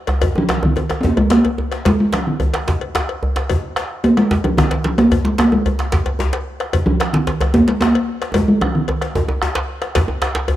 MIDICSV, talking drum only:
0, 0, Header, 1, 2, 480
1, 0, Start_track
1, 0, Tempo, 272232
1, 384, Time_signature, 12, 3, 24, 8
1, 9502, Tempo, 268456
1, 18757, End_track
2, 0, Start_track
2, 0, Title_t, "Talking drum"
2, 0, Program_c, 0, 116
2, 668, Note_on_c, 0, 53, 84
2, 1012, Note_off_c, 0, 53, 0
2, 1012, Note_on_c, 0, 53, 67
2, 1146, Note_on_c, 0, 51, 83
2, 1172, Note_off_c, 0, 53, 0
2, 1764, Note_off_c, 0, 51, 0
2, 1775, Note_on_c, 0, 60, 82
2, 1846, Note_on_c, 0, 58, 100
2, 1872, Note_off_c, 0, 60, 0
2, 2071, Note_on_c, 0, 56, 96
2, 2097, Note_off_c, 0, 58, 0
2, 2308, Note_on_c, 0, 58, 96
2, 2335, Note_off_c, 0, 56, 0
2, 3282, Note_on_c, 0, 56, 91
2, 3309, Note_off_c, 0, 58, 0
2, 3519, Note_off_c, 0, 56, 0
2, 3530, Note_on_c, 0, 56, 87
2, 3765, Note_on_c, 0, 53, 81
2, 3792, Note_off_c, 0, 56, 0
2, 4001, Note_on_c, 0, 51, 68
2, 4028, Note_off_c, 0, 53, 0
2, 4719, Note_off_c, 0, 51, 0
2, 7123, Note_on_c, 0, 58, 95
2, 7228, Note_off_c, 0, 58, 0
2, 7359, Note_on_c, 0, 56, 100
2, 7831, Note_on_c, 0, 53, 83
2, 7858, Note_off_c, 0, 56, 0
2, 8065, Note_on_c, 0, 51, 84
2, 8091, Note_off_c, 0, 53, 0
2, 8550, Note_on_c, 0, 53, 75
2, 8577, Note_off_c, 0, 51, 0
2, 8782, Note_on_c, 0, 58, 98
2, 8808, Note_off_c, 0, 53, 0
2, 9247, Note_on_c, 0, 56, 82
2, 9273, Note_off_c, 0, 58, 0
2, 9499, Note_on_c, 0, 58, 83
2, 9526, Note_off_c, 0, 56, 0
2, 9742, Note_on_c, 0, 56, 77
2, 9769, Note_off_c, 0, 58, 0
2, 11190, Note_off_c, 0, 56, 0
2, 12131, Note_on_c, 0, 53, 86
2, 12589, Note_off_c, 0, 53, 0
2, 12619, Note_on_c, 0, 51, 87
2, 13346, Note_on_c, 0, 58, 102
2, 13372, Note_off_c, 0, 51, 0
2, 13576, Note_off_c, 0, 58, 0
2, 13586, Note_on_c, 0, 56, 88
2, 13697, Note_off_c, 0, 56, 0
2, 13823, Note_on_c, 0, 58, 102
2, 14790, Note_on_c, 0, 56, 91
2, 14817, Note_off_c, 0, 58, 0
2, 15020, Note_off_c, 0, 56, 0
2, 15031, Note_on_c, 0, 56, 84
2, 15267, Note_on_c, 0, 53, 78
2, 15294, Note_off_c, 0, 56, 0
2, 15512, Note_on_c, 0, 51, 72
2, 15539, Note_off_c, 0, 53, 0
2, 16232, Note_off_c, 0, 51, 0
2, 18757, End_track
0, 0, End_of_file